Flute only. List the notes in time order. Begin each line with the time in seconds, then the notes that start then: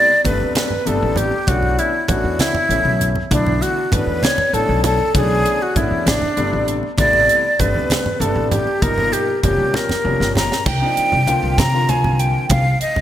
Already playing: D5
0.25 B4
0.56 B4
0.87 A4
1.17 G4
1.48 F#4
1.79 E4
2.08 F#4
2.40 E4
3.31 D4
3.62 F#4
3.93 B4
4.23 C#5
4.54 A4
4.85 A4
5.16 G#4
5.62 F#4
5.77 E4
6.08 D4
6.98 D5
7.60 B4
8.20 A4
8.52 G4
8.82 A#4
9.13 G4
9.44 G4
9.75 A#4
10.36 A#5
10.67 G5
11.58 A#5
11.90 G#5
12.20 G5
12.50 F5
12.81 D#5